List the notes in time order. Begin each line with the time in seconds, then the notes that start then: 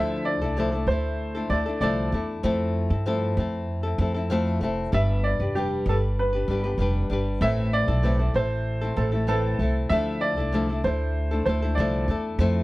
Already playing: D2 D3 F3 A3 D4 E4 A4 E5
0.25 D5
0.41 C2 D4 E4 A4
0.45 A3
0.57 D3 F3 A3 D4 E4 A4
0.72 A3 D4 E4 A4
0.87 D2 A3 D4 E4 C5
0.92 A4
1.35 A3 D4 E4 A4
1.50 D2 A3 D4 E4 A4 D5
1.66 A3 D4 E4 A4
1.81 C2 D3 F3 A3 D4 E4 A4 D5
2.12 E2 A3 D4 E4 A4
2.43 F2 F3 A3 C4 E4 A4
2.90 G2 C4 E4 A4
3.06 F3 A3 C4 E4 A4
3.37 F2 A3 C4 E4 A4
3.83 C4 E4 A4
3.98 F2 A3 C4 E4 A4
4.14 C4 E4 A4
4.30 F3 A3 C4 E4 A4
4.61 F1 A3 C4 E4 A4
4.92 G1 G3 D4 G4 B4 E5
5.24 D5
5.40 F1 D4 G4 B4
5.55 G3 D4 G4 B4
5.86 G1 G3 D4 G4 A4
5.90 B4
6.19 B4
6.33 D4 G4 B4
6.48 G1 G3 D4 G4 B4
6.64 D4 G4 B4
6.78 F1 G3 D4 G4 B4
7.10 G1 G3 D4 G4 B4
7.41 A1 A2 E3 A3 C4 E4 A4 E5
7.73 D5
7.88 B1 A3 C4 E4 A4
8.03 A2 E3 A3 C4 E4 A4
8.19 A3 C4 E4 A4
8.34 A1 A3 C4 E4 A4 C5
8.81 A3 C4 E4 A4
8.96 A1 A3 C4 E4 A4
9.12 A3 C4 E4 A4
9.27 A2 E3 A3 C4 E4 A4
9.59 C2 A3 C4 E4 A4
9.89 D2 D3 F3 A3 D4 E4 A4 E5
10.21 D5
10.37 C2 A3 D4 E4 A4
10.52 D3 F3 A3 D4 E4 A4
10.69 A3 D4 E4 A4
10.84 D2 A3 D4 E4 A4 C5
11.31 A3 D4 E4 A4
11.46 D2 A3 D4 E4 A4 C5
11.62 A3 D4 E4 A4
11.75 C2 D3 F3 A3 D5
11.79 D4 E4 A4
12.08 E2 A3 D4 E4 A4
12.39 F2 F3 A3 C4 E4 A4